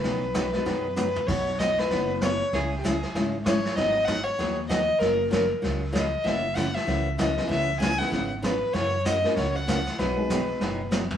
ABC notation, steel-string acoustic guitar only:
X:1
M:4/4
L:1/8
Q:"Swing" 1/4=193
K:B
V:1 name="Steel-string acoustic guitar"
[B,,D,F,B,DG] z [B,,D,F,B,DG] z [B,,D,F,B,DG] z [B,,D,F,B,DG] z | [B,DFc] z [B,DFc] z [B,DFc] z [B,DFc] z | [C,G,CEG] z [C,G,CEG] z [C,G,CEG] z [C,G,CEG] z | [D,F,B,DG] z [D,F,B,DG] z [D,F,B,DG] z [D,F,B,DG] z |
[F,A,CG] z [F,A,CG] z [F,A,CG] z [F,A,CG] z | [C,E,A,CF] z [C,E,A,CF] z [C,E,A,CF] z [C,E,A,CF] z | [C,E,B,CG] z [C,E,B,CG] z [C,E,B,CG] z [C,E,B,CG] z | [C,E,A,CF] z [C,E,A,CF] z [C,E,A,CF] z [C,E,A,CF] z |
[B,,D,F,B,DG] z [B,,D,F,B,DG] z [B,,D,F,B,DG] z [B,,D,F,B,DG] z |]